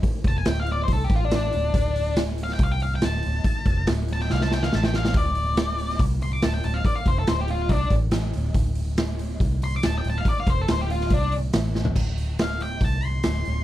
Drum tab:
CC |----------------|----------------|----------------|----------------|
HH |o-o-o-o-o-o-o-o-|o-o-o-o-o-o-o-o-|o-o-o-o---------|o-o-o-o-o-o-o-o-|
SD |----o-------o---|----o--o----o---|----o--ooooooooo|----o--o----o---|
FT |----------------|----------------|----------------|----------------|
BD |o-o-----o-o-----|o-------o-------|o-o-------------|o-------o-------|

CC |----------------|----------------|----------------|x---------------|
HH |o-o-o-o-o-o-o-o-|o-o-o-o-o-o-o-o-|o-o-o-o-o-o-o---|--o-o-o-o-o-o-o-|
SD |----o-------o---|----o-------o---|----o--o----o-o-|----o-------o---|
FT |----------------|----------------|---------------o|----------------|
BD |o-o-----o-o-----|o-------o-------|o-o-----o-------|o-------o-------|